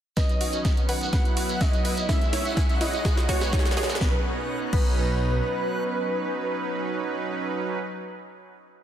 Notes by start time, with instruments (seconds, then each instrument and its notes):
0.17 detuned saw bass B1, analog synth pad D#3 B3 C#4, supersaw synth F#3 C#4 D#4 B4, synth pluck B4, analog synth lead D#5, synth bell D#5, synth texture F#5, kick, snare, closed hi-hat, riser, shekere
0.29 closed hi-hat, shekere
0.41 detuned saw bass B1, synth pluck F#4, open hi-hat
0.52 closed hi-hat, shekere
0.65 detuned saw bass B1, synth pluck D#4, kick, snare, closed hi-hat, shekere
0.77 closed hi-hat, shekere
0.89 detuned saw bass B1, synth pluck B4, analog synth lead F#5, synth bell F#5, open hi-hat
1.01 closed hi-hat, shekere
1.12 detuned saw bass B1, analog synth pad F#3 E4, supersaw synth F#3 B3 E4 B4, synth pluck B4, kick, snare, closed hi-hat, shekere
1.25 closed hi-hat, shekere
1.37 detuned saw bass B1, synth pluck F#4, open hi-hat
1.49 closed hi-hat, shekere
1.61 detuned saw bass B1, synth bell D#5, analog synth lead D#5, synth pluck E5, kick, snare, closed hi-hat, shekere
1.73 closed hi-hat, shekere
1.85 detuned saw bass B1, synth pluck B4, open hi-hat
1.97 closed hi-hat, shekere
2.09 detuned saw bass B1, supersaw synth G#3 C#4 E4 C#5, analog synth pad G#3 C#4, synth pluck E4, synth bell E5, analog synth lead E5, kick, snare, closed hi-hat, shekere
2.21 closed hi-hat, shekere
2.33 detuned saw bass B1, synth pluck C#5, snare, open hi-hat
2.45 closed hi-hat, shekere
2.57 synth pluck G#4, kick, snare, closed hi-hat, shekere
2.69 closed hi-hat, shekere
2.81 detuned saw bass B1, synth pluck E4, analog synth lead D#5, synth bell D#5, snare, open hi-hat
2.93 closed hi-hat, shekere
3.05 detuned saw bass B1, supersaw synth G#3 D#4 F#4 B4, analog synth pad B3 F#4, synth pluck G#4, kick, snare, closed hi-hat, shekere
3.17 snare, closed hi-hat, shekere
3.29 detuned saw bass B1, synth pluck F#4, synth bell C#5, analog synth lead C#5, kick, snare, open hi-hat
3.41 snare, closed hi-hat, shekere
3.53 synth pluck D#4, kick, snare, closed hi-hat
3.59 snare
3.65 snare, closed hi-hat, shekere
3.71 snare
3.77 detuned saw bass B1, synth pluck G#4, snare, open hi-hat
3.83 snare
3.89 snare, closed hi-hat, shekere
3.95 snare
4.01 detuned saw bass B1, analog synth pad B2 B3 C#4 D#4, supersaw synth F#3 C#4 D#4 B4, synth pluck B3, synth bell B4, analog synth lead B4, kick, snare
4.73 detuned saw bass B1, supersaw synth F#3 C#4 D#4 B4, synth pluck B3, analog synth lead B4, synth bell B4, kick, crash